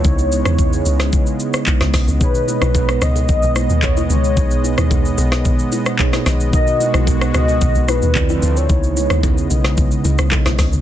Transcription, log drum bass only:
X:1
M:4/4
L:1/16
Q:1/4=111
K:B
V:1 name="Log drum bass" clef=bass
C,,3 E,,3 C,,2 z4 z C,, B,,, C,, | z3 B,,,3 C,,2 B,,, B,,,2 D,,3 C,,2 | B,,,3 D,,3 B,,,2 z6 B,,,2 | z3 B,,,3 C,,2 B,,, B,,,2 D,,3 =D,,2 |
C,,3 D,,3 B,,,2 B,,, z C,, C,, z B,,, C,, C,, |]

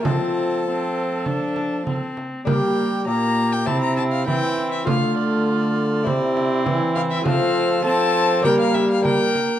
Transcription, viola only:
X:1
M:4/4
L:1/8
Q:1/4=100
K:Gdor
V:1 name="Viola"
C2 C2 D2 C2 | B,2 B,2 C2 C2 | A,4 C4 | C2 C2 B,2 B,2 |]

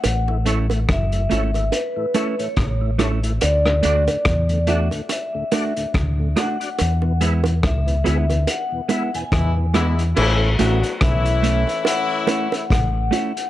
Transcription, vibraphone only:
X:1
M:4/4
L:1/16
Q:"Swing 16ths" 1/4=71
K:A
V:1 name="Vibraphone"
f2 z2 e4 B3 c3 z2 | d6 e2 e4 z2 f2- | f2 z2 e4 f3 g3 z2 | z4 e4 f4 f4 |]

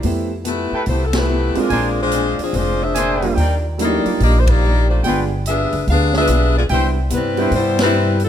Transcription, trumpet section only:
X:1
M:4/4
L:1/8
Q:"Swing" 1/4=144
K:C
V:1 name="Trumpet section"
z3 [EABg] z4 | [D_Bc_a] z4 z [DBca]2 | [_E_Bdg] z6 z | [F_ABg] z6 z |
[EBcg] z2 [EBcg]3 z2 |]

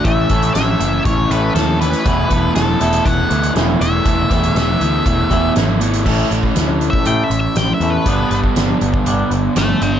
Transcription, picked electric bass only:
X:1
M:4/4
L:1/8
Q:1/4=120
K:Emix
V:1 name="Picked electric bass" clef=bass
A,,, A,,, A,,, F,,, A,,, A,,, ^D,,2 | E,,, E,,, E,,, E,,, E,,, D,, E,,, E,,, | E,,, E,,, E,,, D,, E,,, E,,, G,,,2 | [K:Amix] A,,, A,,, D,,2 A,, A,,, A,,, E,, |
G,,, G,,, G,,, G,,, G,,, G,,, G,,, G,,, |]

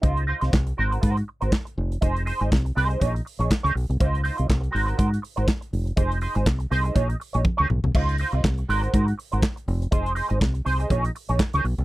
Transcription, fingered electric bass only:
X:1
M:4/4
L:1/16
Q:"Swing 16ths" 1/4=122
K:Db
V:1 name="Fingered electric bass" clef=bass
D,,3 C,, C,,2 A,,,2 A,,2 z A,,, z2 F,,,2 | F,,,3 A,,, C,,2 C,,2 B,,,2 z B,,, z D,, _C,, =C,, | D,,3 C,, C,,2 A,,,2 A,,2 z A,,, z2 F,,,2 | F,,,3 A,,, C,,2 C,,2 B,,,2 z B,,, z D,, _C,, =C,, |
D,,3 C,, C,,2 A,,,2 A,,2 z A,,, z2 F,,,2 | F,,,3 A,,, C,,2 C,,2 B,,,2 z B,,, z D,, _C,, =C,, |]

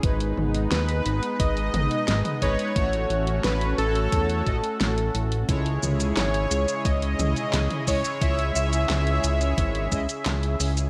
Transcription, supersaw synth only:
X:1
M:4/4
L:1/8
Q:1/4=88
K:C#m
V:1 name="Supersaw synth"
z2 B2 d3 c- | c z B A4 z | z2 c2 d3 c | e e6 z |]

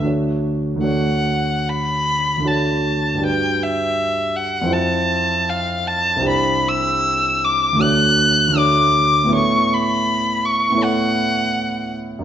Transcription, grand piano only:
X:1
M:4/4
L:1/8
Q:1/4=79
K:Dmix
V:1 name="Grand piano"
[D,,A,DF^c]2 [D,,A,DFc]4 [D,,A,DFc]2 | [G,,G,DFB]4 [=F,,CE=Fc]4 | [K:A] [=C,,=CD=G=c]4 [D,,A,DF^c]2 [D,,A,DFc]2 | [A,,B,EAc]4 [A,,B,EAc]4 |]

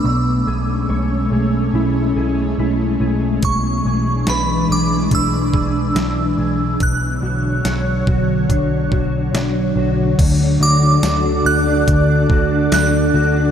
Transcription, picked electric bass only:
X:1
M:4/4
L:1/8
Q:1/4=71
K:Dlyd
V:1 name="Picked electric bass" clef=bass
B,,, B,,, B,,, B,,, B,,, B,,, B,,, B,,, | B,,, B,,, B,,, B,,, B,,, B,,, B,,, B,,, | B,,, B,,, B,,, B,,, B,,, B,,, B,,, B,,, | D,, D,, D,, D,, D,, D,, D,, D,, |]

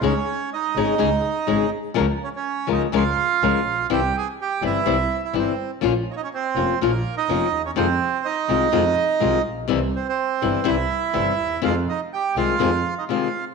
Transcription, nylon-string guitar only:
X:1
M:4/4
L:1/8
Q:1/4=124
K:Fm
V:1 name="Nylon-string guitar" clef=bass
[D,A,DEA] z2 [D,A,DEA] [D,A,DEA] z [D,A,DEA] z | [D,F,A,DFB] z2 [D,F,A,DFB] [D,F,A,DFB] z [D,F,A,DFB] z | [C,=E,G,C=E] z2 [C,E,G,CE] [C,E,G,CE] z [C,E,G,CE] z | [F,B,DF] z2 [F,B,DF] [F,B,DF] z [F,B,DF] z |
[C,E,A,CF] z2 [C,E,A,CF] [C,E,A,CF] z [C,E,A,CF] z | [C,=E,G,C=E] z2 [C,E,G,CE] [C,E,G,CE] z [C,E,G,CE] z | [C,E,A,CF] z2 [C,E,A,CF] [C,E,A,CF] z [C,E,A,CF] z |]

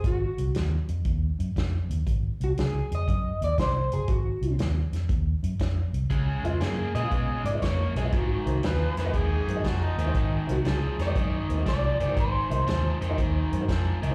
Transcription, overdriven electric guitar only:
X:1
M:4/4
L:1/8
Q:"Swing" 1/4=119
K:Abmix
V:1 name="Overdriven electric guitar" clef=bass
z8 | z8 | z8 | [D,A,]2 [D,B,] [D,A,] [D,A,]2 [D,B,] [D,A,] |
[A,,E,]2 [A,,F,] [A,,E,] [A,,E,]2 [A,,F,] [A,,E,] | [A,,E,]2 [A,,F,] [A,,E,] [A,,E,]2 [A,,F,] [A,,E,] | [A,,E,]2 [A,,F,] [A,,E,] [A,,E,]2 [A,,F,] [A,,E,] |]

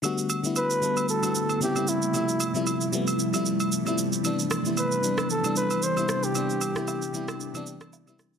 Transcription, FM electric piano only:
X:1
M:4/4
L:1/16
Q:"Swing 16ths" 1/4=114
K:Clyd
V:1 name="FM electric piano" clef=bass
[D,G,A,B,F]2 z [D,G,A,B,E]2 z [D,G,A,B,A]2 z [D,G,A,B,F]3 [_D,G,_B,CE] [D,G,B,CE]2 z | [C,=F,G,A,E]2 z [C,F,G,A,E]2 z [C,F,G,A,B,]2 z [C,F,G,A,E]3 z [C,F,G,A,E]2 z | [C,E,G,B,D]2 z [C,E,G,B,E]2 z [C,E,G,B,D]2 z [C,E,G,B,D]3 z [C,E,G,B,E]2 z | [C,E,G,B,D]2 z [C,E,G,B,E]2 z [C,E,G,B,E]2 z [C,E,G,B,D]3 z [C,E,G,B,E]2 z |]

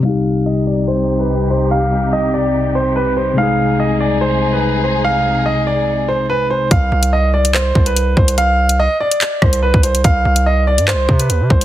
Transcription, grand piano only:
X:1
M:4/4
L:1/16
Q:1/4=144
K:Cm
V:1 name="Grand piano"
f4 e2 d2 c3 =B3 c2 | f4 e2 d4 c2 =B2 c2 | f4 e2 d2 c3 =B3 c2 | f4 e2 d4 c2 =B2 c2 |
f4 e2 d2 c3 =B3 c2 | f4 e2 d4 c2 =B2 c2 | f4 e2 d2 c3 =B3 c2 |]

